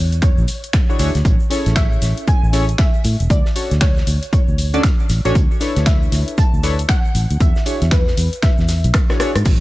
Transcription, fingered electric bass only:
0, 0, Header, 1, 2, 480
1, 0, Start_track
1, 0, Tempo, 512821
1, 1171, Time_signature, 4, 2, 24, 8
1, 8987, End_track
2, 0, Start_track
2, 0, Title_t, "Fingered electric bass"
2, 0, Program_c, 0, 33
2, 0, Note_on_c, 0, 40, 89
2, 357, Note_on_c, 0, 35, 100
2, 371, Note_off_c, 0, 40, 0
2, 418, Note_off_c, 0, 35, 0
2, 931, Note_on_c, 0, 38, 85
2, 1026, Note_off_c, 0, 38, 0
2, 1077, Note_on_c, 0, 38, 89
2, 1138, Note_off_c, 0, 38, 0
2, 1170, Note_on_c, 0, 33, 102
2, 1265, Note_off_c, 0, 33, 0
2, 1557, Note_on_c, 0, 33, 93
2, 1838, Note_off_c, 0, 33, 0
2, 1890, Note_on_c, 0, 33, 93
2, 1985, Note_off_c, 0, 33, 0
2, 2277, Note_on_c, 0, 33, 80
2, 2558, Note_off_c, 0, 33, 0
2, 2851, Note_on_c, 0, 45, 100
2, 2946, Note_off_c, 0, 45, 0
2, 2997, Note_on_c, 0, 28, 83
2, 3058, Note_off_c, 0, 28, 0
2, 3090, Note_on_c, 0, 38, 96
2, 3185, Note_off_c, 0, 38, 0
2, 3476, Note_on_c, 0, 38, 95
2, 3758, Note_off_c, 0, 38, 0
2, 3810, Note_on_c, 0, 38, 94
2, 3905, Note_off_c, 0, 38, 0
2, 4196, Note_on_c, 0, 38, 80
2, 4478, Note_off_c, 0, 38, 0
2, 4770, Note_on_c, 0, 33, 105
2, 4865, Note_off_c, 0, 33, 0
2, 4916, Note_on_c, 0, 33, 80
2, 4977, Note_off_c, 0, 33, 0
2, 5010, Note_on_c, 0, 38, 100
2, 5106, Note_off_c, 0, 38, 0
2, 5397, Note_on_c, 0, 38, 97
2, 5678, Note_off_c, 0, 38, 0
2, 5730, Note_on_c, 0, 38, 94
2, 5825, Note_off_c, 0, 38, 0
2, 6117, Note_on_c, 0, 38, 79
2, 6398, Note_off_c, 0, 38, 0
2, 6691, Note_on_c, 0, 33, 101
2, 6786, Note_off_c, 0, 33, 0
2, 6837, Note_on_c, 0, 38, 84
2, 6898, Note_off_c, 0, 38, 0
2, 6931, Note_on_c, 0, 40, 100
2, 7026, Note_off_c, 0, 40, 0
2, 7317, Note_on_c, 0, 40, 89
2, 7598, Note_off_c, 0, 40, 0
2, 7651, Note_on_c, 0, 40, 90
2, 7746, Note_off_c, 0, 40, 0
2, 8037, Note_on_c, 0, 40, 79
2, 8271, Note_off_c, 0, 40, 0
2, 8277, Note_on_c, 0, 35, 105
2, 8338, Note_off_c, 0, 35, 0
2, 8757, Note_on_c, 0, 44, 94
2, 8818, Note_off_c, 0, 44, 0
2, 8851, Note_on_c, 0, 33, 104
2, 8946, Note_off_c, 0, 33, 0
2, 8987, End_track
0, 0, End_of_file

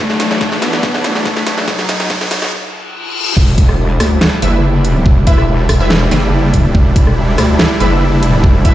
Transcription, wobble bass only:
0, 0, Header, 1, 2, 480
1, 0, Start_track
1, 0, Key_signature, 1, "minor"
1, 0, Tempo, 422535
1, 1905, Time_signature, 4, 2, 24, 8
1, 9933, End_track
2, 0, Start_track
2, 0, Title_t, "Wobble bass"
2, 0, Program_c, 0, 39
2, 3825, Note_on_c, 0, 28, 97
2, 4527, Note_off_c, 0, 28, 0
2, 4545, Note_on_c, 0, 38, 96
2, 4767, Note_off_c, 0, 38, 0
2, 5025, Note_on_c, 0, 30, 98
2, 5727, Note_off_c, 0, 30, 0
2, 5745, Note_on_c, 0, 28, 97
2, 6447, Note_off_c, 0, 28, 0
2, 6465, Note_on_c, 0, 28, 98
2, 6927, Note_off_c, 0, 28, 0
2, 6945, Note_on_c, 0, 30, 95
2, 7647, Note_off_c, 0, 30, 0
2, 7665, Note_on_c, 0, 28, 99
2, 8367, Note_off_c, 0, 28, 0
2, 8386, Note_on_c, 0, 38, 97
2, 8607, Note_off_c, 0, 38, 0
2, 8865, Note_on_c, 0, 30, 98
2, 9567, Note_off_c, 0, 30, 0
2, 9586, Note_on_c, 0, 28, 100
2, 9933, Note_off_c, 0, 28, 0
2, 9933, End_track
0, 0, End_of_file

